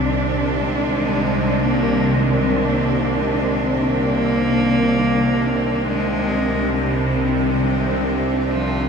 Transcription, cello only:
0.59 1.64 G#3 loud
1.63 2.16 A#3 loud
2.15 2.70 G#3 loud
2.68 3.22 A#3 loud
3.21 3.75 G#3 medium
3.73 5.87 A#3 loud
5.85 6.90 G#3 loud
6.89 7.69 G3 medium
8.48 8.89 F3 medium

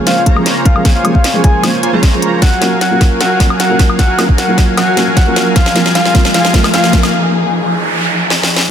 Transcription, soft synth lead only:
0.07 0.22 F5 loud
0.65 0.81 F5 loud
0.95 1.05 F5 medium
1.15 1.30 F5 medium
1.44 1.60 G#5 loud
2.42 2.62 F#5 loud
2.81 3.02 F#5 medium
3.21 3.41 F#5 medium
3.60 3.80 F#5 medium
3.99 4.19 F#5 loud
4.38 4.59 F#5 medium
4.77 4.98 F#5 loud
5.17 5.37 F#5 medium
5.56 5.76 F5 loud
5.95 6.15 F5 loud
6.34 6.55 F5 loud
6.74 6.94 F5 loud

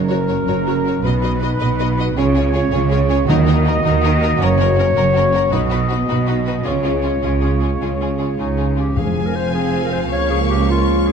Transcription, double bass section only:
0.00 0.41 F#1 medium
0.48 0.97 F#1 medium
1.03 1.53 B1 medium
1.61 2.10 B1 medium
2.17 2.66 C#2 medium
2.72 3.22 C#2 medium
3.29 3.78 D#2 medium
3.84 4.33 D#2 medium
4.40 4.89 F#1 medium
4.96 5.46 F#1 medium
5.53 6.02 B1 medium
6.09 6.59 B1 medium
6.65 7.16 C#2 medium
7.22 7.73 C#2 medium
7.81 8.32 C#2 soft
8.39 8.90 C#2 medium
8.98 10.07 F1 soft
10.11 11.12 C#2 medium

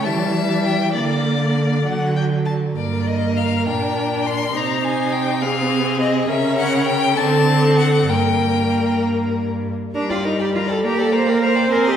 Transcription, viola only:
0.05 0.95 G3 soft
0.95 1.84 A#3 soft
1.85 2.54 F#3 soft
2.76 3.68 A#3 soft
3.67 4.55 D4 soft
4.55 5.44 D#4 soft
5.42 6.29 C4 soft
6.30 7.13 C#4 medium
7.18 8.11 C4 medium
8.10 9.75 A#3 soft
9.95 10.85 G3 soft
10.83 11.70 A#3 medium
11.71 11.97 C4 medium

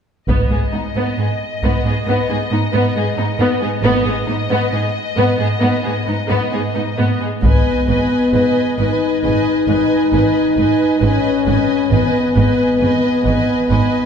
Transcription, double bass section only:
0.28 0.49 G#1 soft
3.83 4.04 G#1 medium
7.43 7.51 G#1 soft
7.88 7.96 G#1 soft
8.33 8.41 G#1 soft
8.78 8.86 G#1 soft
9.23 9.31 G#1 soft
9.68 9.76 G#1 soft
10.13 10.21 G#1 soft
10.57 10.65 G#1 soft
11.02 11.10 G#1 soft
11.46 11.54 G#1 soft
11.91 11.99 G#1 soft
12.36 12.44 G#1 soft
12.80 12.88 G#1 soft
13.25 13.33 G#1 soft
13.69 13.77 G#1 soft

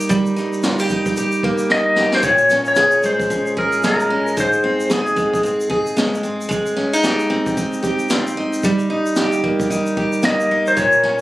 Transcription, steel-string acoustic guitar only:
0.00 1.44 A#3 medium
0.00 0.35 D#4 medium
0.00 0.63 G4 medium
0.09 2.23 G3 medium
0.36 0.90 D#4 medium
0.64 0.80 F4 medium
0.80 1.16 G4 soft
0.91 1.70 D#4 medium
1.17 1.97 G4 medium
1.44 2.80 A#3 medium
1.71 2.30 D#4 medium
1.98 2.31 G4 medium
2.23 4.37 A#2 medium
2.51 3.29 C#4 medium
2.77 3.56 G#4 medium
3.04 3.84 G#3 medium
3.30 4.09 C#4 soft
3.57 4.89 G#4 medium
3.84 5.16 G#3 medium
4.10 4.44 C#4 medium
4.37 6.50 G#2 medium
4.64 5.43 C4 medium
4.90 5.69 G#4 medium
5.16 5.96 G#3 soft
5.43 6.23 C4 medium
5.70 7.03 G#4 medium
5.97 6.49 G#3 medium
6.23 6.76 C4 soft
6.49 8.63 G#3 medium
6.76 6.93 C#4 medium
6.93 7.56 D#4 soft
7.03 7.82 G4 medium
7.30 8.09 C4 medium
7.57 8.37 D#4 medium
7.83 9.17 G4 medium
8.10 8.70 C4 medium
8.37 8.89 D#4 medium
8.65 10.77 G3 medium
8.90 9.69 D#4 soft
9.17 9.96 G4 medium
9.44 10.22 A#3 soft
9.71 10.50 D#4 soft
9.97 10.83 G4 medium
10.23 11.21 A#3 medium
10.51 10.84 D#4 soft
10.77 11.21 A#2 medium
11.04 11.21 C#4 soft

